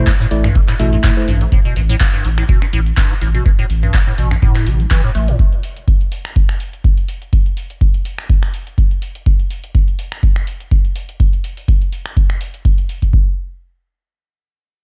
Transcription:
0.07 acid bass G2, kick, clap, closed hi-hat, shaker
0.20 acid bass A2, closed hi-hat, shaker
0.31 sub bass A1, tine electric piano A3 E4 D5, open hi-hat, shaker
0.44 acid bass G2, finger snap, closed hi-hat, shaker
0.55 acid bass A2, kick, closed hi-hat, shaker
0.68 acid bass A2, finger snap, clap, closed hi-hat, shaker
0.80 sub bass A1, acid bass B2, tine electric piano A3 E4 E5, open hi-hat, shaker
0.93 acid bass G2, closed hi-hat, shaker
1.04 acid bass A2, kick, clap, closed hi-hat, shaker
1.16 tine electric piano A3 E4 C5, closed hi-hat, shaker
1.28 sub bass A1, acid bass G2, open hi-hat, shaker
1.41 acid bass A2, closed hi-hat, shaker
1.52 acid bass A2, kick, closed hi-hat, shaker
1.65 acid bass B2, closed hi-hat, shaker
1.76 sub bass A1, acid bass G2, open hi-hat, shaker
1.89 acid bass A2, closed hi-hat, shaker
2.00 kick, clap, closed hi-hat, shaker
2.13 acid bass G2, closed hi-hat, shaker
2.25 sub bass A1, acid bass A2, open hi-hat, shaker
2.38 acid bass A2, finger snap, closed hi-hat, shaker
2.49 acid bass B2, kick, closed hi-hat, shaker
2.62 acid bass G2, finger snap, closed hi-hat, shaker
2.73 sub bass A1, acid bass A2, open hi-hat, shaker
2.86 closed hi-hat, shaker
2.97 acid bass G2, kick, clap, closed hi-hat, shaker
3.10 acid bass A2, closed hi-hat, shaker
3.21 sub bass A1, acid bass A2, open hi-hat, shaker
3.34 acid bass B2, closed hi-hat, shaker
3.46 acid bass G2, kick, closed hi-hat, shaker
3.58 acid bass A2, closed hi-hat, shaker
3.70 sub bass A1, open hi-hat, shaker
3.82 acid bass G2, closed hi-hat, shaker
3.94 acid bass A2, kick, clap, closed hi-hat, shaker
4.07 acid bass A2, closed hi-hat, shaker
4.18 sub bass A1, acid bass B2, open hi-hat, shaker
4.31 acid bass G2, finger snap, closed hi-hat, shaker
4.42 acid bass A2, kick, closed hi-hat, shaker
4.55 finger snap, clap, closed hi-hat, shaker
4.67 sub bass A1, acid bass C3, open hi-hat, shaker
4.80 acid bass A3, closed hi-hat, shaker
4.90 acid bass E3, kick, clap, closed hi-hat, shaker
5.04 acid bass A2, closed hi-hat, shaker
5.14 sub bass A1, acid bass A3, open hi-hat, shaker
5.28 acid bass A2, closed hi-hat, shaker
5.39 kick, closed hi-hat
5.52 closed hi-hat
5.63 open hi-hat
5.76 closed hi-hat
5.88 kick, closed hi-hat
6.01 closed hi-hat
6.12 open hi-hat
6.25 finger snap, closed hi-hat
6.36 kick, closed hi-hat
6.49 finger snap, closed hi-hat
6.60 open hi-hat
6.73 closed hi-hat
6.84 kick, closed hi-hat
6.98 closed hi-hat
7.09 open hi-hat
7.22 closed hi-hat
7.33 kick, closed hi-hat
7.46 closed hi-hat
7.57 open hi-hat
7.70 closed hi-hat
7.81 kick, closed hi-hat
7.94 closed hi-hat
8.05 open hi-hat
8.19 finger snap, closed hi-hat
8.30 kick, closed hi-hat
8.43 finger snap, closed hi-hat
8.54 open hi-hat
8.67 closed hi-hat
8.78 kick, closed hi-hat
8.91 closed hi-hat
9.02 open hi-hat
9.15 closed hi-hat
9.26 kick, closed hi-hat
9.39 closed hi-hat
9.51 open hi-hat
9.64 closed hi-hat
9.75 kick, closed hi-hat
9.88 closed hi-hat
9.99 open hi-hat
10.12 finger snap, closed hi-hat
10.23 kick, closed hi-hat
10.36 finger snap, closed hi-hat
10.47 open hi-hat
10.60 closed hi-hat
10.71 kick, closed hi-hat
10.85 closed hi-hat
10.96 open hi-hat
11.09 closed hi-hat
11.20 kick, closed hi-hat
11.33 closed hi-hat
11.44 open hi-hat
11.57 open hi-hat
11.68 kick, closed hi-hat
11.81 closed hi-hat
11.93 open hi-hat
12.06 finger snap, closed hi-hat
12.17 kick, closed hi-hat
12.30 finger snap, closed hi-hat
12.41 open hi-hat
12.54 closed hi-hat
12.65 kick, closed hi-hat
12.78 closed hi-hat
12.89 open hi-hat
13.02 kick, closed hi-hat
13.13 kick

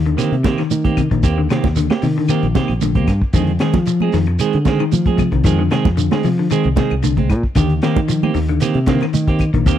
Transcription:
Already playing: fingered electric bass D#2
0.06 clean electric guitar D3, closed hi-hat
0.17 clean electric guitar D#3 A#3 C4 G4, snare, closed hi-hat, high conga, claves, shekere
0.32 fingered electric bass C3, closed hi-hat
0.44 clean electric guitar C3 D#3 A#3 C4 G4, kick, snare, closed hi-hat, high conga, shekere
0.58 clean electric guitar D#3, snare, closed hi-hat, claves
0.71 fingered electric bass D#3, closed hi-hat, high conga, shekere
0.85 clean electric guitar A#3 C4 G4, kick, closed hi-hat, high conga
0.97 clean electric guitar C3, kick, closed hi-hat, claves, shekere
1.11 fingered electric bass A#1, clean electric guitar D#3, kick, closed hi-hat
1.23 fingered electric bass D#2, clean electric guitar A#3 C4 G4, muted clean electric guitar stroke, kick, closed hi-hat, high conga, shekere
1.38 clean electric guitar D3
1.50 clean electric guitar C3 D#3 A#3 C4 G4, snare, closed hi-hat, claves, shekere
1.64 fingered electric bass D#2, kick, snare, closed hi-hat, high conga
1.76 clean electric guitar D3, closed hi-hat, high conga, shekere
1.90 clean electric guitar A#3 C4 G4, muted clean electric guitar stroke, snare, closed hi-hat, high conga, claves
2.02 clean electric guitar C3, fingered electric bass D#3, open hi-hat, shekere
2.18 clean electric guitar D3
2.29 clean electric guitar D#3 A#3 C4 G4, closed hi-hat, high conga, claves, shekere
2.43 fingered electric bass A#1, closed hi-hat
2.55 clean electric guitar C3 D#3 A#3 C4 G4, kick, snare, closed hi-hat, high conga, shekere
2.68 fingered electric bass A#1, closed hi-hat, claves
2.81 clean electric guitar D3, closed hi-hat, high conga, shekere
2.95 clean electric guitar A#3 C4 G4, kick, closed hi-hat, high conga
3.07 fingered electric bass G2, kick, snare, closed hi-hat, claves, shekere
3.22 kick
3.33 fingered electric bass F2, clean electric guitar D3 D#3 G#3 C4 G#4, kick, closed hi-hat, high conga, shekere
3.47 closed hi-hat
3.59 clean electric guitar D#3 G#3 C4 G#4, snare, closed hi-hat, claves, shekere
3.73 fingered electric bass F3, kick, snare, closed hi-hat, high conga
3.86 clean electric guitar F3, closed hi-hat, high conga, shekere
4.00 clean electric guitar G#3 C4 G#4, high conga, claves
4.12 fingered electric bass F2, clean electric guitar D#3, snare, open hi-hat, shekere
4.26 muted clean electric guitar stroke, closed hi-hat
4.39 clean electric guitar D#3 G#3 C4 G#4, closed hi-hat, high conga, claves, shekere
4.53 fingered electric bass D3, closed hi-hat
4.65 clean electric guitar D#3 G#3 C4 G#4, kick, snare, closed hi-hat, high conga, shekere
4.79 clean electric guitar D#3, closed hi-hat, claves
4.91 fingered electric bass F3, closed hi-hat, high conga, shekere
5.05 clean electric guitar G#3 C4 G#4, kick, closed hi-hat, high conga
5.18 clean electric guitar C3, kick, closed hi-hat, high conga, claves, shekere
5.32 fingered electric bass C2, clean electric guitar D#3, kick, closed hi-hat
5.44 fingered electric bass F2, clean electric guitar D#3 G#3 C4 G#4, kick, closed hi-hat, shekere
5.59 clean electric guitar D3
5.71 clean electric guitar C3 D#3 G#3 C4 G#4, snare, closed hi-hat, claves, shekere
5.85 fingered electric bass F2, kick, snare, closed hi-hat, high conga
5.97 clean electric guitar D3, closed hi-hat, high conga, shekere
6.11 clean electric guitar D3 G#3 C4 G#4, snare, closed hi-hat, high conga, claves
6.23 clean electric guitar C3, fingered electric bass F3, open hi-hat, shekere
6.39 clean electric guitar D3
6.50 clean electric guitar D#3 G#3 C4 G#4, closed hi-hat, high conga, claves, shekere
6.63 fingered electric bass C2, closed hi-hat
6.76 clean electric guitar C3 D#3 G#3 C4 G#4, kick, snare, closed hi-hat, high conga, shekere
6.90 fingered electric bass C2, closed hi-hat, claves
7.02 clean electric guitar D3, closed hi-hat, high conga, shekere
7.17 clean electric guitar G#3 C4, kick, closed hi-hat, high conga
7.30 fingered electric bass A#2, kick, closed hi-hat, claves, shekere
7.43 kick
7.55 fingered electric bass D#2, clean electric guitar D3 D#3 G4, muted clean electric guitar stroke, kick, snare, closed hi-hat, high conga, shekere
7.69 closed hi-hat
7.82 clean electric guitar D#3 A#3 C4 G4, snare, closed hi-hat, claves, shekere
7.96 fingered electric bass D#3, kick, closed hi-hat, high conga
8.08 clean electric guitar F3, closed hi-hat, high conga, shekere
8.23 clean electric guitar A#3 C4 G4, high conga, claves
8.34 fingered electric bass D#2, clean electric guitar D#3, open hi-hat, shekere
8.48 clean electric guitar D3, closed hi-hat
8.60 clean electric guitar D#3 A#3 C4 G4, closed hi-hat, high conga, claves, shekere
8.74 fingered electric bass C3, closed hi-hat
8.86 clean electric guitar D3 D#3 A#3 C4, muted clean electric guitar stroke, kick, snare, closed hi-hat, high conga, shekere
9.00 clean electric guitar D#3, snare, closed hi-hat, claves
9.13 fingered electric bass D#3, closed hi-hat, high conga, shekere
9.27 clean electric guitar A#3 C4 G4, kick, closed hi-hat
9.39 kick, closed hi-hat, claves, shekere
9.54 fingered electric bass A#1, clean electric guitar D#3, kick, closed hi-hat
9.66 fingered electric bass D#2, clean electric guitar D#3 A#3 C4 G4, kick, closed hi-hat, high conga, shekere

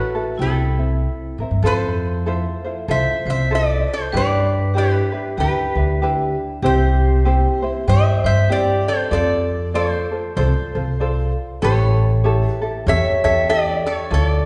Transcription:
Already playing: ukulele E4 F#4 A4 C#5, resonator guitar played with a steel bar F#4 B4, vibraphone F#4
0.15 ukulele E4 F#4 A4
0.38 upright bass C2, ukulele C4 E4 G4, vibraphone E4, resonator guitar played with a steel bar A4
0.43 resonator guitar played with a steel bar E4
0.79 ukulele C4 E4
1.38 upright bass A2, ukulele C4 E4 A#4
1.51 upright bass G2
1.62 upright bass F2, ukulele E4 F4 A4 C5, vibraphone A4, resonator guitar played with a steel bar A4
1.67 resonator guitar played with a steel bar C5
2.26 ukulele E4 F4 A4 C5
2.64 ukulele E4 F4 C5
2.88 upright bass C2, ukulele E4 F4 A4 C5, vibraphone C5, resonator guitar played with a steel bar C5 E5
3.25 upright bass C2, ukulele E4 F4 C5, vibraphone C5
3.30 resonator guitar played with a steel bar C5 E5
3.51 ukulele E4 F4 A4 C5, vibraphone A4
3.55 resonator guitar played with a steel bar A4 D5
3.87 vibraphone A4
3.93 resonator guitar played with a steel bar A4 C5
4.12 upright bass G2, ukulele D4 E4 G4 B4, vibraphone B4
4.16 resonator guitar played with a steel bar B4 D5
4.74 ukulele D4 E4 G4 B4, vibraphone G4, resonator guitar played with a steel bar G4
4.78 resonator guitar played with a steel bar B4
5.12 ukulele D4 E4 B4
5.37 upright bass D2, ukulele D4 E4 G4 B4, vibraphone G4, resonator guitar played with a steel bar G4 B4
5.75 upright bass D2, ukulele D4 E4 B4
6.02 ukulele D4 E4 G4 B4
6.62 upright bass C2, ukulele C4 E4 G4 C5, vibraphone G4, resonator guitar played with a steel bar G4 C5
7.25 ukulele C4 E4 G4 C5
7.62 ukulele C4 E4 C5
7.88 upright bass G2, ukulele C4 E4 G4 C5, vibraphone C5, resonator guitar played with a steel bar C5 E5
8.24 upright bass G2, ukulele C4 E4 C5, vibraphone C5, resonator guitar played with a steel bar C5 E5
8.50 ukulele C4 E4 G4 C5, vibraphone G4, resonator guitar played with a steel bar G4 D5
8.88 vibraphone A4, resonator guitar played with a steel bar A4 C5
9.11 upright bass F2, ukulele F4 A4 C5 D5, vibraphone A4, resonator guitar played with a steel bar A4 D5
9.74 ukulele F4 A4 C5 D5, resonator guitar played with a steel bar A4 C5, vibraphone A4
10.11 ukulele F4 A4 C5
10.37 upright bass C2, ukulele F4 A4 C5 D5, vibraphone A4, resonator guitar played with a steel bar A4 C5
10.75 upright bass C2, ukulele F4 A4 C5
11.00 ukulele F4 A4 C5 D5
11.62 upright bass A1, ukulele E4 G4 A4 C#5, resonator guitar played with a steel bar A4 C#5
11.67 vibraphone A4
12.24 ukulele E4 G4 A4 C#5
12.51 resonator guitar played with a steel bar B4
12.62 ukulele E4 G4 A4
12.87 upright bass E2, ukulele E4 G4 A4 C#5, vibraphone C#5, resonator guitar played with a steel bar C#5 E5
13.24 upright bass E2, ukulele E4 G4 A4, resonator guitar played with a steel bar C#5 E5, vibraphone C#5
13.49 ukulele E4 G4 A4, resonator guitar played with a steel bar A4 D5, vibraphone A4
13.86 vibraphone A4, resonator guitar played with a steel bar A4 C#5
14.11 upright bass D2, ukulele E4 F4 A4 D5, vibraphone A4, resonator guitar played with a steel bar A4 C#5
14.25 resonator guitar played with a steel bar D5

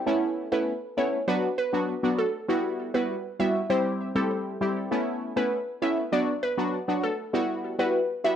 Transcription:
0.06 synth stab A3 B3 C#4 E4
0.52 synth stab A3 B3 C#4 E4, synth pluck B4
0.97 synth stab A3 B3 C#4 E4, synth pluck C#5
1.27 synth stab F#3 B3 D4 F#4, synth pluck B4
1.58 synth pluck B4
1.73 synth stab F#3 B3 D4 F#4
2.03 synth stab F#3 B3 D4 F#4
2.19 synth pluck A4
2.48 synth stab G3 B3 E4 F#4
2.94 synth stab G3 B3 E4 F#4, synth pluck B4
3.40 synth stab G3 B3 E4 F#4, synth pluck E5
3.70 synth stab G3 C4 E4 G4, synth pluck C5
4.15 synth stab G3 C4 E4 G4, synth pluck A4
4.61 synth stab G3 C4 E4 G4
4.91 synth stab A3 B3 C#4 E4
5.36 synth stab A3 B3 C#4 E4, synth pluck B4
5.82 synth stab A3 B3 C#4 E4, synth pluck E5
6.12 synth stab F#3 B3 D4 F#4, synth pluck D5
6.43 synth pluck B4
6.57 synth stab F#3 B3 D4 F#4
6.88 synth stab F#3 B3 D4 F#4
7.04 synth pluck A4
7.33 synth stab G3 B3 E4 F#4
7.79 synth stab G3 B3 E4 F#4, synth pluck B4
8.24 synth stab G3 B3 E4 F#4, synth pluck E5

